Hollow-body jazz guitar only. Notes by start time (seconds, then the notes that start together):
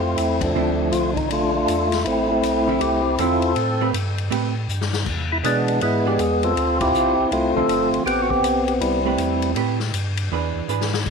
0.55 D3 F3 C4 E4
2.67 D3 F3 C4 E4
3.19 D3 F3 C4 E4
3.81 A3 C4 G4 B4
4.31 A3 C4 G4 B4
5.44 E3 B3 D4 G#4
6.06 E3 B3 D4 G#4
7.57 D3 F3 C4
9.05 A3 C4 G4 B4
9.55 A3 C4 G4 B4
10.32 E3 D4 G#4 B4
10.69 E3 D4 G#4 B4